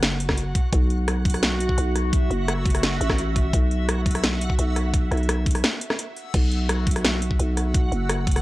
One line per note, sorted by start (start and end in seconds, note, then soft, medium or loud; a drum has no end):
0.00 0.54 F#1 loud
0.00 6.33 F#4 medium
0.00 0.74 F#5 medium
0.00 snare loud
0.00 closed hi-hat medium
0.20 closed hi-hat medium
0.29 kick medium
0.29 cross-stick medium
0.29 snare soft
0.37 closed hi-hat medium
0.55 kick loud
0.55 closed hi-hat medium
0.72 1.76 B1 loud
0.72 6.36 E5 medium
0.72 kick loud
0.72 closed hi-hat medium
0.90 closed hi-hat soft
1.08 cross-stick medium
1.08 closed hi-hat medium
1.25 kick loud
1.25 closed hi-hat soft
1.30 closed hi-hat medium
1.34 cross-stick soft
1.34 open hi-hat medium
1.43 snare loud
1.43 closed hi-hat medium
1.60 closed hi-hat medium
1.69 kick medium
1.78 2.29 B1 medium
1.78 closed hi-hat medium
1.96 cross-stick soft
1.96 closed hi-hat medium
2.13 kick loud
2.13 closed hi-hat medium
2.30 2.99 F#1 loud
2.30 closed hi-hat soft
2.48 cross-stick medium
2.48 closed hi-hat medium
2.66 kick loud
2.66 closed hi-hat soft
2.70 closed hi-hat medium
2.75 cross-stick medium
2.75 open hi-hat medium
2.83 snare loud
2.83 closed hi-hat medium
3.01 3.52 A1 loud
3.01 closed hi-hat medium
3.10 kick medium
3.10 cross-stick medium
3.10 snare soft
3.18 closed hi-hat medium
3.36 kick loud
3.36 closed hi-hat medium
3.53 4.57 B1 loud
3.53 kick loud
3.53 closed hi-hat medium
3.71 closed hi-hat soft
3.89 cross-stick medium
3.89 closed hi-hat medium
4.06 kick loud
4.06 closed hi-hat soft
4.11 closed hi-hat medium
4.15 cross-stick medium
4.15 open hi-hat medium
4.24 snare loud
4.24 closed hi-hat medium
4.41 closed hi-hat medium
4.50 kick medium
4.59 5.10 B1 medium
4.59 closed hi-hat medium
4.76 cross-stick soft
4.76 closed hi-hat medium
4.94 kick loud
4.94 closed hi-hat medium
5.11 5.62 B1 loud
5.11 cross-stick soft
5.11 closed hi-hat soft
5.17 closed hi-hat soft
5.23 closed hi-hat soft
5.29 cross-stick medium
5.29 closed hi-hat medium
5.46 kick loud
5.46 closed hi-hat soft
5.51 closed hi-hat medium
5.55 cross-stick medium
5.55 open hi-hat medium
5.64 snare loud
5.64 closed hi-hat medium
5.81 closed hi-hat medium
5.90 cross-stick medium
5.90 snare soft
5.99 closed hi-hat medium
6.17 open hi-hat soft
6.34 7.38 B1 loud
6.34 8.42 F#4 medium
6.34 8.42 F#5 medium
6.34 kick loud
6.34 closed hi-hat medium
6.34 crash medium
6.52 closed hi-hat soft
6.69 cross-stick medium
6.69 closed hi-hat medium
6.87 kick loud
6.87 closed hi-hat medium
6.91 closed hi-hat medium
6.96 cross-stick medium
6.96 open hi-hat medium
7.05 snare loud
7.05 closed hi-hat medium
7.22 closed hi-hat medium
7.31 kick medium
7.39 7.91 B1 loud
7.39 closed hi-hat medium
7.57 cross-stick soft
7.57 closed hi-hat medium
7.74 kick loud
7.74 closed hi-hat medium
7.92 8.42 F#1 loud
7.92 closed hi-hat soft
8.09 cross-stick medium
8.09 closed hi-hat medium
8.27 kick loud
8.27 closed hi-hat medium
8.31 closed hi-hat medium
8.36 cross-stick medium
8.36 open hi-hat medium